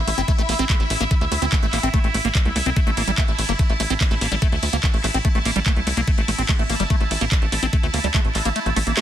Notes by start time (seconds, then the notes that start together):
Already playing: E4 E5
0.07 A1 A3, open hi-hat, ride
0.18 G1 C4, closed hi-hat
0.28 A3, kick, closed hi-hat, ride
0.38 A1 A3, closed hi-hat
0.49 A1 A#3, open hi-hat, ride
0.59 A1 C4, closed hi-hat
0.69 A3, kick, clap, closed hi-hat, ride
0.80 A1 A3, closed hi-hat
0.90 A1 A3, open hi-hat, ride
1.00 A1 A#3, closed hi-hat
1.11 A3, kick, closed hi-hat, ride
1.21 D2 A3, closed hi-hat
1.32 D2 A3, open hi-hat, ride
1.42 D2 C4, closed hi-hat
1.52 A3, kick, clap, closed hi-hat, ride
1.63 A1 A3, closed hi-hat
1.73 A1 A#3, clap, open hi-hat, ride
1.83 A1 C4, closed hi-hat
1.94 A3, kick, closed hi-hat, ride
2.04 A1 A3, closed hi-hat
2.14 A1 A3, open hi-hat, ride
2.25 A1 A#3, closed hi-hat
2.35 A3, kick, clap, closed hi-hat, ride
2.45 C2 A3, closed hi-hat
2.56 C2 A3, open hi-hat, ride
2.66 C2 C4, closed hi-hat
2.76 A3 A5, kick, closed hi-hat, ride
2.87 A1 A3, closed hi-hat
2.97 A1 A#3, open hi-hat, ride
3.07 A1 G3, closed hi-hat
3.18 A3, kick, clap, closed hi-hat, ride
3.28 A1 A3, closed hi-hat
3.39 A1 A3, open hi-hat, ride
3.49 G1 A#3, closed hi-hat
3.59 A3, kick, closed hi-hat, ride
3.70 A1 A3, closed hi-hat
3.80 A1 A3, open hi-hat, ride
3.90 A1 C4, closed hi-hat
4.01 A3, kick, clap, closed hi-hat, ride
4.11 A1 A3, closed hi-hat
4.21 A1 A#3, open hi-hat, ride
4.32 A1 G3, closed hi-hat
4.42 A3, kick, closed hi-hat, ride
4.52 D2 A3, closed hi-hat
4.63 D2 A3, open hi-hat, ride
4.73 D2 A#3, closed hi-hat
4.83 A3, kick, clap, closed hi-hat, ride
4.94 A1 A3, closed hi-hat
5.04 A1 A3, clap, open hi-hat, ride
5.14 A1 C4, closed hi-hat
5.25 A3, kick, closed hi-hat, ride
5.35 A1 A3, closed hi-hat
5.45 A1 A#3, open hi-hat, ride
5.56 A1 G3, closed hi-hat
5.66 A3, kick, clap, closed hi-hat, ride
5.76 C2 A3, closed hi-hat
5.87 C2 A3, open hi-hat, ride
5.97 C2 A#3, closed hi-hat
6.07 A3, kick, closed hi-hat, ride
6.18 A1 A3, closed hi-hat
6.28 A1 A3, open hi-hat, ride
6.39 A1 C4, closed hi-hat
6.49 A3, kick, clap, closed hi-hat, ride
6.59 A1 A3, closed hi-hat
6.70 A1 A#3, open hi-hat, ride
6.80 G1 G3, closed hi-hat
6.90 A3, kick, closed hi-hat, ride
7.01 A1 A3, closed hi-hat
7.11 A1 A3, open hi-hat, ride
7.21 A1 A#3, closed hi-hat
7.32 A3, kick, clap, closed hi-hat, ride
7.42 A1 A3, closed hi-hat
7.52 A1 A3, open hi-hat, ride
7.63 A1 C4, closed hi-hat
7.73 A3, kick, closed hi-hat, ride
7.83 D2 A3, closed hi-hat
7.94 D2 A#3, open hi-hat, ride
8.04 D2 G3, closed hi-hat
8.14 A3, kick, clap, closed hi-hat, ride
8.25 A1 A3, closed hi-hat
8.35 A1 A3, clap, open hi-hat, ride
8.45 A1 A#3, closed hi-hat
8.56 A3, closed hi-hat, ride
8.66 A1 A3, closed hi-hat
8.76 A1 A3, open hi-hat, ride
8.87 A1 A#3, closed hi-hat
8.97 A3, snare, clap, closed hi-hat, ride